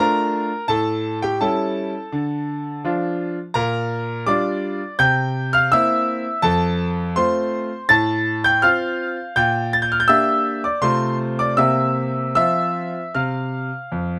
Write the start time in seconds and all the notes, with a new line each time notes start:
Already playing: A3 D4 A#4 A#5
0.00 F4
0.68 A2 A4 A5
1.22 G4 G5
1.41 G3 C#4 E4 A4 A5
2.12 D3
2.85 F3 D4 F4
3.54 A#2 A#4 A#5
4.26 G3 D4 F4 D5 D6
4.99 C3 G5 G6
5.53 F5 F6
5.72 A#3 C4 E4 E5 E6
6.42 F2 A4 A5
7.16 A3 C4 F4 C5 C6
7.89 A2 A5 A6
8.44 G5 G6
8.62 C4 F4 F5 F6
9.36 A#2 G5 G6
9.73 A6
9.82 G6
9.92 F6
10.00 G6
10.08 A#3 D4 G4 E5 E6
10.64 D5 D6
10.81 C3 A3 C4 F4 C5 C6
11.39 D5 D6
11.57 C3 A#3 C4 G4 E5 E6
12.35 F3 C4 F4 E5 E6
13.15 C3 F5 F6
13.92 F2